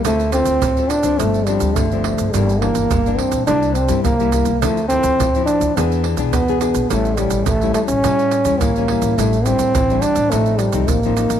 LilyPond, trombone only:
\new Staff \with { instrumentName = "Trombone" } { \time 4/4 \key d \minor \tempo 4 = 105 a8 c'4 d'8 a8 g8 a4 | g8 bes4 c'8 d'8 c'8 bes4 | a8 c'4 d'8 b8 r8 b4 | a8 g8 a8 a16 cis'4~ cis'16 bes4 |
a8 c'4 d'8 a8 g8 bes4 | }